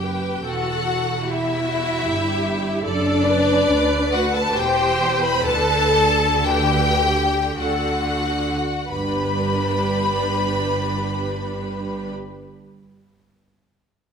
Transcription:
Already playing: double bass section F#1, cello section F#2, violin section G4 G5
0.04 viola section B4
0.45 double bass section E1, cello section E2, violin section F#4 F#5, viola section A4
1.25 violin section E4 E5, viola section G4
1.66 viola section F#4
2.05 double bass section G1, cello section G2, viola section G4
2.84 double bass section F#1, cello section F#2, violin section D4 D5, viola section A4
3.26 viola section B4
3.69 double bass section D2, cello section D2
4.12 violin section F#4 F#5
4.34 violin section A4 A5
4.55 double bass section E1, cello section E2, violin section G4 G5, viola section C5
5.22 violin section B4 B5
5.46 double bass section D2, cello section D3, violin section A4 A5, viola section B4
5.96 viola section A4
6.46 violin section G4 G5, viola section B4
7.02 viola section G4
7.59 double bass section D2, cello section D3, violin section F#4 F#5, viola section A4
8.88 double bass section G1, cello section G2, viola section D4 G4, violin section B4 B5

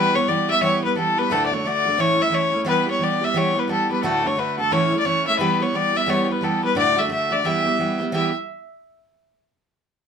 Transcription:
Already playing: steel-string acoustic guitar E3 G3 B3 G4, fiddle B4
0.14 steel-string acoustic guitar G3 B3 G4, fiddle C#5
0.28 steel-string acoustic guitar E3 G3 B3 G4, fiddle D5
0.49 steel-string acoustic guitar G3 B3 G4, fiddle E5
0.61 steel-string acoustic guitar E3 G3 B3 G4, fiddle C#5
0.83 steel-string acoustic guitar G3 B3 G4, fiddle B4
0.95 steel-string acoustic guitar E3 G3 B3 G4, fiddle A4
1.17 steel-string acoustic guitar G3 B3 G4, fiddle B4
1.30 steel-string acoustic guitar D2 A2 D3 A3 D4 F#4, fiddle A4
1.46 fiddle D5
1.52 steel-string acoustic guitar D3 A3 D4 F#4, fiddle C#5
1.64 steel-string acoustic guitar D3 A3 D4 F#4, fiddle D5
1.85 steel-string acoustic guitar D3 A3 D4 F#4
1.97 steel-string acoustic guitar A2 E3 A3 C#4 E4, fiddle C#5
2.17 steel-string acoustic guitar A3 C#4 E4
2.22 fiddle E5
2.30 steel-string acoustic guitar E3 A3 C#4 E4
2.34 fiddle C#5
2.52 steel-string acoustic guitar A3 C#4 E4
2.65 steel-string acoustic guitar E3 G3 B3 G4
2.69 fiddle B4
2.86 steel-string acoustic guitar G3 B3 G4
2.91 fiddle C#5
2.99 steel-string acoustic guitar E3 G3 B3 G4
3.03 fiddle D5
3.21 steel-string acoustic guitar G3 B3 G4, fiddle E5
3.34 steel-string acoustic guitar E3 G3 B3 G4, fiddle C#5
3.55 steel-string acoustic guitar G3 B3 G4
3.59 fiddle B4
3.68 steel-string acoustic guitar E3 G3 B3 G4, fiddle A4
3.89 steel-string acoustic guitar G3 B3 G4, fiddle B4
4.03 steel-string acoustic guitar D2 A2 D3 A3 D4 F#4, fiddle A4
4.24 steel-string acoustic guitar D3 A3 D4 F#4, fiddle C#5
4.36 steel-string acoustic guitar D3 A3 D4 F#4, fiddle B4
4.58 steel-string acoustic guitar D3 A3 D4 F#4, fiddle A4
4.71 steel-string acoustic guitar A2 E3 A3 C#4 E4, fiddle C#5
4.92 steel-string acoustic guitar A3 C#4 E4
5.00 fiddle D5
5.04 steel-string acoustic guitar E3 A3 C#4 E4, fiddle C#5
5.26 steel-string acoustic guitar A3 C#4 E4, fiddle E5
5.39 steel-string acoustic guitar E3 G3 B3 G4, fiddle B4
5.60 steel-string acoustic guitar G3 B3 G4, fiddle C#5
5.73 steel-string acoustic guitar E3 G3 B3 G4, fiddle D5
5.93 steel-string acoustic guitar G3 B3 G4, fiddle E5
6.06 steel-string acoustic guitar E3 G3 B3 G4, fiddle C#5
6.25 steel-string acoustic guitar G4, fiddle C#5
6.30 steel-string acoustic guitar G3 B3, fiddle B4
6.41 steel-string acoustic guitar E3 G3 B3 G4, fiddle A4
6.62 steel-string acoustic guitar G3 B3 G4, fiddle B4
6.75 steel-string acoustic guitar D2 A2 D3 A3 D4 F#4, fiddle D5
6.96 steel-string acoustic guitar D3 A3 D4 F#4, fiddle E5
7.08 steel-string acoustic guitar D3 A3 D4 F#4, fiddle E5
7.30 steel-string acoustic guitar D3 A3 D4 F#4, fiddle D5
7.44 steel-string acoustic guitar E3 G3 B3 G4, fiddle E5
7.64 steel-string acoustic guitar G3 B3 G4
7.78 steel-string acoustic guitar E3 G3 B3 G4
7.99 steel-string acoustic guitar G3 B3 G4
8.12 steel-string acoustic guitar E3 G3 B3 G4, fiddle E5

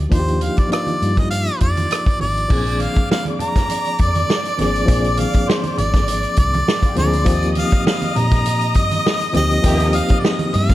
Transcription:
Already playing: reed electric piano F3 A#3 D4 D#4 G4
0.09 fingered electric bass D#2, reed electric piano F3 A#3 D4 D#4 F4, harmonica C5, kick, closed hi-hat
0.19 reed electric piano G4
0.28 closed hi-hat, muted conga
0.41 harmonica F5, closed hi-hat, high conga
0.57 harmonica D5, kick, closed hi-hat
0.69 reed electric piano F3 A#3 D4 D#4 F4, harmonica D5, closed hi-hat, muted conga
0.73 cross-stick
0.87 closed hi-hat, high conga
1.02 fingered electric bass G2, closed hi-hat
1.17 harmonica D#5, kick, cross-stick, closed hi-hat, low conga
1.31 harmonica F5, closed hi-hat
1.47 closed hi-hat
1.60 fingered electric bass F2, harmonica D5, kick, closed hi-hat
1.77 closed hi-hat, high conga
1.90 cross-stick, closed hi-hat, muted conga
2.06 kick, closed hi-hat
2.20 fingered electric bass G#1, harmonica D5, cross-stick, open hi-hat, high conga, low conga
2.37 closed hi-hat
2.48 fingered electric bass A#1, reed electric piano F3 A#3 C4 C#4 G#4, string section D5 D6, kick, crash, muted conga
2.58 reed electric piano D4
2.67 closed hi-hat
2.80 harmonica F5, closed hi-hat, high conga
2.95 kick, closed hi-hat
3.11 harmonica F5, snare
3.25 closed hi-hat, muted conga, high conga
3.39 harmonica A#5, closed hi-hat, low conga
3.56 kick, snare, closed hi-hat, low conga
3.70 closed hi-hat, muted conga
3.85 closed hi-hat, muted conga
3.98 fingered electric bass F2, harmonica D5, kick, closed hi-hat
4.15 closed hi-hat, high conga
4.30 snare
4.45 closed hi-hat
4.57 fingered electric bass G#1, reed electric piano F3 A#3 C4 D4 G#4, harmonica D5, snare, closed hi-hat, high conga, low conga
4.75 closed hi-hat
4.86 fingered electric bass A#1, reed electric piano F3 A#3 C4 D4 G#4, kick, closed hi-hat, muted conga
5.04 closed hi-hat, muted conga
5.17 harmonica F5, closed hi-hat, high conga
5.33 kick, closed hi-hat
5.49 harmonica C5, snare
5.64 closed hi-hat, muted conga, high conga
5.78 fingered electric bass G#1, harmonica D5, closed hi-hat, low conga
5.94 kick, snare, closed hi-hat, low conga
6.08 closed hi-hat, muted conga
6.23 closed hi-hat
6.37 fingered electric bass C2, harmonica D5, kick, closed hi-hat
6.53 closed hi-hat, high conga
6.68 snare
6.83 string section F4 F5, kick, closed hi-hat
6.91 string section G4 G5
6.95 fingered electric bass D2, reed electric piano F3 A#3 C4 D4 G#4, string section G#4 G#5, harmonica D5, snare, closed hi-hat, high conga, low conga
7.06 string section A#4 A#5
7.13 string section C5 C6, closed hi-hat
7.21 reed electric piano F3, string section D5 D6
7.26 fingered electric bass D#2, reed electric piano A#3 C4 D#4 G4, string section D#5 D#6, kick, closed hi-hat
7.42 closed hi-hat, muted conga
7.55 harmonica F5, closed hi-hat, high conga
7.71 kick, closed hi-hat
7.84 harmonica F5, snare, muted conga
8.02 closed hi-hat, muted conga, high conga
8.16 fingered electric bass A#2, harmonica A#5, closed hi-hat, low conga
8.32 kick, snare, closed hi-hat, low conga
8.46 closed hi-hat, muted conga
8.61 closed hi-hat
8.74 fingered electric bass G2, harmonica D#5, kick, closed hi-hat
8.91 closed hi-hat, high conga
9.06 snare
9.21 closed hi-hat, muted conga
9.32 fingered electric bass D2, reed electric piano F3 A#3 C4 D#4, harmonica D#5, snare, closed hi-hat, high conga, low conga
9.37 reed electric piano G4
9.51 closed hi-hat
9.62 fingered electric bass D#2, horn section C3 A#3 G4, reed electric piano F3 A#3 C4 D#4 G4, kick, closed hi-hat
9.80 closed hi-hat, muted conga
9.93 harmonica F5, closed hi-hat, high conga
10.08 kick, closed hi-hat
10.19 harmonica D5, muted conga
10.25 harmonica D#5, snare
10.39 closed hi-hat, muted conga, high conga
10.53 fingered electric bass G2, harmonica F5, closed hi-hat, low conga
10.70 kick, snare, closed hi-hat, low conga

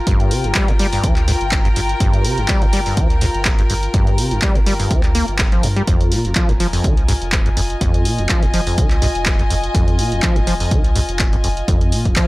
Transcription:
Already playing: string section F4 A#4 G5
0.07 sub bass G1, acid bass G2, kick, closed hi-hat
0.20 closed hi-hat
0.31 acid bass C3, open hi-hat
0.44 sub bass G1, acid bass G2, closed hi-hat
0.55 acid bass G3, kick, clap, closed hi-hat
0.68 sub bass G1, acid bass G2, closed hi-hat
0.79 acid bass G3, open hi-hat
0.93 acid bass G2, open hi-hat
1.04 sub bass D2, acid bass F3, kick, closed hi-hat
1.16 clap, closed hi-hat
1.28 acid bass G#2, open hi-hat
1.41 sub bass G1, closed hi-hat
1.52 kick, clap, closed hi-hat
1.65 acid bass G2, closed hi-hat
1.76 sub bass G1, acid bass G2, open hi-hat
1.89 closed hi-hat
2.00 sub bass G1, acid bass G2, kick, closed hi-hat
2.13 closed hi-hat
2.25 acid bass C3, open hi-hat
2.38 sub bass G1, acid bass G2, closed hi-hat
2.48 acid bass G3, kick, clap, closed hi-hat
2.62 sub bass G1, acid bass G2, closed hi-hat
2.73 acid bass G3, open hi-hat
2.86 acid bass G2, open hi-hat
2.97 sub bass D2, acid bass F3, kick, closed hi-hat
3.10 closed hi-hat
3.21 acid bass G#2, open hi-hat
3.34 sub bass G1, closed hi-hat
3.45 kick, clap, closed hi-hat
3.59 acid bass G2, closed hi-hat
3.70 sub bass G1, acid bass G2, open hi-hat
3.83 closed hi-hat
3.94 sub bass G1, acid bass G2, kick, closed hi-hat
4.07 closed hi-hat
4.18 acid bass C3, open hi-hat
4.31 sub bass G1, acid bass G2, closed hi-hat
4.42 acid bass G3, kick, clap, closed hi-hat
4.55 sub bass G1, acid bass G2, closed hi-hat
4.66 acid bass G3, open hi-hat
4.80 acid bass G2, open hi-hat
4.91 sub bass D2, acid bass F3, kick, closed hi-hat
5.03 clap, closed hi-hat
5.15 acid bass A#3, open hi-hat
5.28 sub bass G1, closed hi-hat
5.39 kick, clap, closed hi-hat
5.52 acid bass F3, closed hi-hat
5.63 acid bass G2, sub bass G2, open hi-hat
5.76 acid bass G3, closed hi-hat
5.87 sub bass F1, acid bass F2, string section F4, kick, closed hi-hat
6.01 closed hi-hat
6.12 acid bass A#2, open hi-hat
6.25 sub bass F1, acid bass F2, closed hi-hat
6.35 acid bass F3, kick, clap, closed hi-hat
6.46 sub bass F1, acid bass F2, string section G#5, closed hi-hat
6.60 acid bass F3, open hi-hat
6.69 acid bass F2, string section D#5, open hi-hat
6.84 sub bass C2, acid bass D#3, kick, closed hi-hat
6.97 closed hi-hat
7.08 acid bass G2, open hi-hat
7.22 sub bass F1, closed hi-hat
7.32 kick, clap, closed hi-hat
7.46 acid bass F2, closed hi-hat
7.57 sub bass F1, acid bass F2, open hi-hat
7.70 closed hi-hat
7.81 sub bass F1, acid bass F2, kick, closed hi-hat
7.94 closed hi-hat
8.05 acid bass A#2, open hi-hat
8.18 sub bass F1, acid bass F2, closed hi-hat
8.29 acid bass F3, kick, clap, closed hi-hat
8.43 sub bass F1, acid bass F2, closed hi-hat
8.54 acid bass F3, open hi-hat
8.67 acid bass F2, open hi-hat
8.78 sub bass C2, acid bass D#3, kick, closed hi-hat
8.91 clap, closed hi-hat
9.02 acid bass G2, open hi-hat
9.15 sub bass F1, closed hi-hat
9.26 kick, clap, closed hi-hat
9.39 acid bass F2, closed hi-hat
9.50 sub bass F1, acid bass F2, open hi-hat
9.64 closed hi-hat
9.75 sub bass F1, acid bass F2, kick, closed hi-hat
9.88 closed hi-hat
9.99 acid bass A#2, open hi-hat
10.12 sub bass F1, acid bass F2, closed hi-hat
10.23 acid bass F3, kick, clap, closed hi-hat
10.36 sub bass F1, acid bass F2, closed hi-hat
10.47 acid bass F3, open hi-hat
10.60 acid bass F2, open hi-hat
10.71 sub bass C2, acid bass D#3, kick, closed hi-hat
10.84 closed hi-hat
10.96 acid bass G2, open hi-hat
11.09 sub bass F1, closed hi-hat
11.19 kick, clap, closed hi-hat
11.33 acid bass F2, closed hi-hat
11.44 sub bass F1, acid bass F2, open hi-hat
11.57 closed hi-hat
11.68 sub bass F1, acid bass F2, kick, closed hi-hat
11.81 closed hi-hat
11.92 acid bass A#2, open hi-hat
12.05 sub bass F1, acid bass F2, kick, closed hi-hat
12.16 acid bass F3, kick, clap, closed hi-hat

